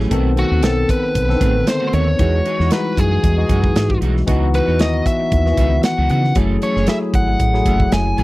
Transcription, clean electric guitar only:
0.00 0.10 E3 soft
0.00 0.11 C#4 medium
0.00 0.12 G#4 medium
0.10 0.30 D#3 medium
0.10 0.30 A3 medium
0.10 0.30 C4 medium
0.10 0.31 F#4 medium
0.36 0.51 D#3 medium
0.36 0.51 A3 medium
0.36 0.50 C4 medium
0.36 0.49 F#4 medium
0.51 0.62 D#3 soft
0.51 0.62 A3 soft
0.51 0.63 C4 medium
0.51 0.63 F#4 medium
0.63 muted clean electric guitar stroke soft
0.77 muted clean electric guitar stroke soft
1.03 muted clean electric guitar stroke soft
1.29 muted clean electric guitar stroke soft
1.40 1.60 D#3 medium
1.40 1.54 A3 medium
1.40 1.54 C4 medium
1.40 1.54 G#4 medium
1.54 muted clean electric guitar stroke soft
1.66 muted clean electric guitar stroke soft
1.80 1.91 D#3 medium
1.80 1.92 A3 medium
1.80 1.92 C4 medium
1.80 1.93 F#4 medium
1.92 2.08 D#3 medium
1.92 2.07 A3 medium
1.92 2.06 C4 medium
1.92 2.06 F#4 medium
2.07 muted clean electric guitar stroke soft
2.19 2.38 E3 medium
2.19 2.39 G#3 medium
2.19 2.39 D#4 medium
2.19 2.39 G#4 medium
2.45 2.60 E3 soft
2.45 2.59 G#3 medium
2.45 2.59 D#4 medium
2.45 2.59 G#4 medium
2.60 2.70 E3 soft
2.60 2.71 G#3 soft
2.60 2.71 D#4 soft
2.60 2.71 F#4 soft
2.71 muted clean electric guitar stroke soft
2.85 muted clean electric guitar stroke soft
3.11 muted clean electric guitar stroke soft
3.38 muted clean electric guitar stroke soft
3.49 3.68 E3 medium
3.49 3.63 G#3 medium
3.49 3.63 D#4 medium
3.49 3.62 F#4 medium
3.63 muted clean electric guitar stroke soft
3.89 muted clean electric guitar stroke soft
4.01 4.21 E3 medium
4.01 4.15 G#3 medium
4.01 4.15 D#4 medium
4.01 4.14 F#4 medium
4.16 muted clean electric guitar stroke soft
4.27 4.47 E3 medium
4.27 4.47 B3 medium
4.27 4.47 D#4 medium
4.27 4.47 F#4 medium
4.54 4.68 E3 soft
4.54 4.67 B3 medium
4.54 4.67 D#4 medium
4.54 4.66 F#4 medium
4.67 4.78 E3 soft
4.67 4.79 B3 medium
4.67 4.79 D#4 medium
4.67 4.79 F#4 medium
4.80 muted clean electric guitar stroke soft
4.94 muted clean electric guitar stroke soft
5.20 muted clean electric guitar stroke medium
5.46 muted clean electric guitar stroke soft
5.58 5.77 E3 medium
5.58 5.72 B3 medium
5.58 5.71 D#4 medium
5.58 5.71 G#4 medium
5.72 muted clean electric guitar stroke soft
5.84 muted clean electric guitar stroke soft
5.97 6.08 E3 medium
5.97 6.09 B3 medium
5.97 6.09 D#4 medium
5.97 6.10 F#4 medium
6.09 6.25 E3 medium
6.09 6.23 B3 medium
6.09 6.23 D#4 medium
6.09 6.22 F#4 medium
6.23 muted clean electric guitar stroke soft
6.36 6.55 E3 medium
6.36 6.55 A3 medium
6.36 6.55 C#4 medium
6.36 6.56 A4 medium
6.61 6.76 E3 medium
6.61 6.75 A3 medium
6.61 6.75 C#4 medium
6.61 6.75 A4 medium
6.75 6.86 E3 soft
6.75 6.87 A3 soft
6.75 6.87 C#4 soft
6.75 6.88 G#4 medium
7.02 muted clean electric guitar stroke soft
7.28 muted clean electric guitar stroke soft
7.54 muted clean electric guitar stroke soft
7.66 7.85 E3 medium
7.66 7.80 A3 medium
7.66 7.79 C#4 medium
7.66 7.79 G#4 medium
7.80 muted clean electric guitar stroke soft
8.06 muted clean electric guitar stroke soft
8.17 8.23 E3 medium
8.17 8.23 A3 medium
8.17 8.23 C#4 medium
8.17 8.23 G#4 medium

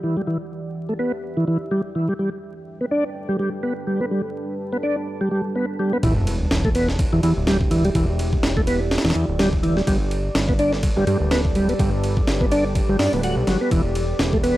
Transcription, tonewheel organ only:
0.03 0.16 E3 medium
0.17 0.22 G3 loud
0.27 0.37 E3 medium
0.89 0.94 A3 medium
0.99 1.12 B3 medium
1.37 1.45 E3 medium
1.48 1.58 E3 medium
1.71 1.81 G3 loud
1.95 2.08 E3 medium
2.09 2.14 G3 loud
2.19 2.29 G3 medium
2.81 2.86 B3 medium
2.91 3.04 D4 medium
3.29 3.37 G3 loud
3.39 3.49 G3 medium
3.63 3.73 B3 medium
3.87 4.00 G3 medium
4.01 4.05 B3 medium
4.11 4.21 G3 medium
4.72 4.77 B3 medium
4.83 4.96 D4 medium
5.21 5.29 G3 medium
5.31 5.41 G3 medium
5.55 5.66 B3 medium
5.79 5.92 G3 medium
5.93 5.98 B3 medium
6.04 6.14 E3 medium
6.65 6.70 A3 medium
6.75 6.88 B3 loud
7.13 7.21 E3 loud
7.23 7.33 E3 loud
7.47 7.57 G3 loud
7.71 7.84 E3 medium
7.85 7.90 G3 loud
7.95 8.05 E3 medium
8.57 8.62 A3 medium
8.67 8.80 B3 loud
9.05 9.13 E3 loud
9.15 9.25 E3 loud
9.39 9.49 G3 loud
9.63 9.76 E3 medium
9.77 9.82 G3 loud
9.87 9.97 G3 medium
10.49 10.53 B3 medium
10.59 10.72 D4 medium
10.97 11.05 G3 loud
11.07 11.17 G3 loud
11.31 11.41 B3 loud
11.55 11.68 G3 medium
11.69 11.74 B3 loud
11.80 11.90 G3 medium
12.41 12.46 B3 medium
12.52 12.64 D4 medium
12.89 12.97 G3 loud
13.00 13.12 D4 loud
13.14 13.21 B3 medium
13.24 13.36 F#4 medium
13.48 13.58 F#3 medium
13.61 13.70 B3 loud
13.71 13.82 E3 medium
14.33 14.38 A3 medium
14.43 14.56 B3 loud

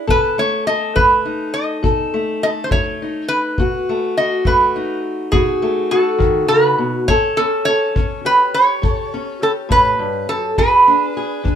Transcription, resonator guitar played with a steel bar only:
0.10 0.36 B4 medium
0.39 0.67 C#5 medium
0.67 0.97 D#5 loud
0.96 1.56 B4 medium
1.54 2.42 D#5 medium
2.43 2.49 D#5 medium
2.64 2.71 C5 medium
2.72 3.28 C#5 medium
3.28 4.19 B4 medium
4.17 4.47 D#5 medium
4.47 5.00 B4 medium
5.32 5.91 G#4 medium
5.91 6.45 A4 medium
6.48 7.08 B4 loud
7.08 7.38 C#5 loud
7.37 7.67 A4 medium
7.65 8.20 C#5 loud
8.26 8.55 B4 loud
8.54 9.44 C#5 medium
9.43 9.51 A4 medium
9.72 10.31 B4 loud
10.29 10.56 A4 medium
10.58 11.55 B4 medium

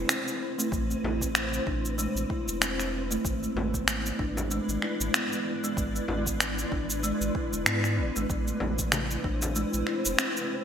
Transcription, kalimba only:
0.09 0.57 C4 medium
0.58 0.71 A3 loud
0.90 1.03 A3 medium
1.21 1.65 C4 medium
1.67 1.77 D4 medium
1.98 2.15 G#3 medium
2.30 2.47 E4 medium
2.61 3.09 C4 loud
3.11 3.24 A3 loud
3.43 3.56 G#3 medium
3.74 4.18 B3 medium
4.19 4.29 D4 medium
4.51 4.68 G#3 loud
4.83 5.00 E4 medium
5.14 5.62 B3 medium
5.64 5.77 G#3 loud
5.95 6.08 G#3 medium
6.27 6.71 B3 medium
6.72 6.82 D4 medium
7.03 7.21 G#3 medium
7.35 7.52 E4 medium
7.66 8.14 B3 loud
8.16 8.29 G#3 loud
8.48 8.61 A3 medium
8.79 8.87 E3 medium
9.24 9.35 D4 medium
9.56 9.73 G#3 loud
9.87 10.05 E4 medium
10.19 10.64 C4 loud

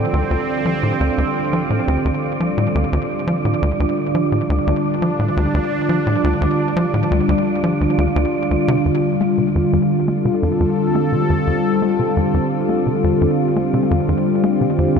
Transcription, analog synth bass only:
0.13 0.23 D2 loud
0.31 0.37 D2 medium
0.66 0.75 F3 medium
0.83 0.93 A2 medium
1.00 1.10 D2 loud
1.18 1.24 D2 loud
1.53 1.63 F3 medium
1.70 1.80 A2 medium
1.88 1.98 D2 loud
2.05 2.11 D2 loud
2.40 2.50 F3 medium
2.58 2.67 A2 medium
2.75 2.85 D2 loud
2.93 2.98 D2 loud
3.27 3.37 F3 medium
3.45 3.55 A2 medium
3.62 3.72 D2 loud
3.80 3.86 D2 medium
4.15 4.24 F3 medium
4.32 4.42 A2 medium
4.50 4.59 D2 loud
4.67 4.73 D2 loud
5.02 5.12 F3 medium
5.19 5.29 A2 medium
5.37 5.47 D2 loud
5.54 5.60 D2 loud
5.89 5.99 F3 medium
6.07 6.16 A2 medium
6.24 6.34 D2 loud
6.41 6.47 D2 loud
6.77 6.86 F3 medium
6.94 7.04 A2 medium
7.11 7.21 D2 loud
7.29 7.34 D2 loud
7.64 7.73 F3 medium
7.81 7.87 D2 medium
7.98 8.08 D2 loud
8.16 8.26 D2 loud
8.51 8.57 D2 medium
8.68 8.78 C3 medium
8.86 8.91 F2 loud
9.21 9.30 A3 medium
9.38 9.48 C3 medium
9.56 9.65 F2 loud
9.73 9.79 F2 loud
10.08 10.18 A3 medium
10.25 10.35 C3 medium
10.43 10.52 F2 medium
10.60 10.66 F2 loud
10.95 11.05 A3 medium
11.13 11.22 C3 medium
11.30 11.40 F2 loud
11.47 11.53 F2 medium
11.82 11.92 A3 medium
11.99 12.09 C3 medium
12.17 12.27 F2 loud
12.34 12.40 F2 loud
12.69 12.79 A3 medium
12.87 12.96 C3 medium
13.04 13.14 F2 loud
13.21 13.27 F2 loud
13.56 13.66 A3 medium
13.74 13.84 C3 medium
13.91 14.01 F2 loud
14.09 14.15 F2 loud
14.44 14.53 A3 medium
14.61 14.71 C3 medium
14.78 14.88 F2 loud
14.96 15.00 F2 loud

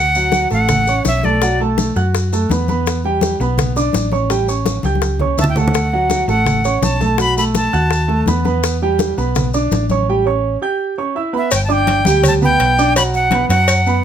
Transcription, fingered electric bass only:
0.00 0.45 D2 medium
0.51 1.02 A1 medium
1.05 1.90 B1 medium
1.96 2.46 F#2 medium
2.50 3.34 E2 medium
3.40 3.90 B1 medium
3.94 4.78 A1 medium
4.84 5.34 C#2 loud
5.38 6.23 D2 medium
6.28 6.79 A1 medium
6.82 7.67 B1 medium
7.74 8.24 D#2 medium
8.27 9.12 E2 medium
9.18 9.68 B1 loud
9.71 10.56 A1 medium
11.52 12.02 G1 medium
12.06 12.56 D2 loud
12.60 13.44 B1 medium
13.49 14.00 F#2 loud

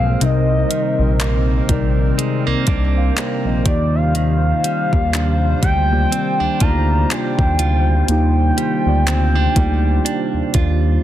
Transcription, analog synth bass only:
0.00 0.16 B1 medium
0.21 0.65 C2 loud
0.99 1.61 A#1 loud
1.69 2.12 A#1 loud
2.47 2.55 C2 soft
2.68 3.11 C2 loud
3.45 3.63 A#1 medium
3.66 4.53 D#2 loud
4.93 5.54 D#2 loud
5.63 6.06 D2 loud
6.40 6.48 D2 soft
6.61 7.04 D2 loud
7.39 7.57 D#2 medium
7.59 8.03 D2 medium
8.08 8.52 D#2 loud
8.86 9.48 D2 loud
9.56 9.99 D2 loud
10.34 10.42 D#2 soft
10.55 10.98 D#2 loud

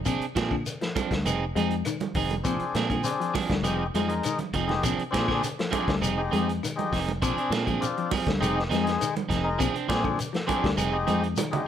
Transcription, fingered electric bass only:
0.06 0.19 A#1 medium
0.20 muted fingered electric bass stroke soft
0.36 0.62 A#2 medium
1.11 1.24 D2 medium
1.26 1.52 F1 medium
1.56 1.82 F2 medium
2.15 2.41 F1 medium
2.45 2.58 A#1 medium
2.61 muted fingered electric bass stroke soft
2.75 3.01 A#2 medium
3.50 3.62 D2 medium
3.63 3.89 F1 medium
3.94 4.20 F2 medium
4.54 4.80 F1 medium
4.84 4.97 A#1 medium
4.98 muted fingered electric bass stroke soft
5.14 5.40 A#2 medium
5.88 6.01 D2 medium
6.02 6.28 F1 loud
6.33 6.59 F2 medium
6.93 7.18 F1 loud
7.23 7.36 A#1 medium
7.37 muted fingered electric bass stroke soft
7.50 7.77 A#2 medium
8.27 8.39 D2 medium
8.41 8.67 F1 medium
8.71 8.97 F2 medium
9.30 9.56 F1 loud
9.61 9.73 A#1 medium
9.74 muted fingered electric bass stroke soft
9.89 10.15 A#2 medium
10.64 10.77 D2 medium
10.78 11.04 F1 loud
11.08 11.34 F2 medium

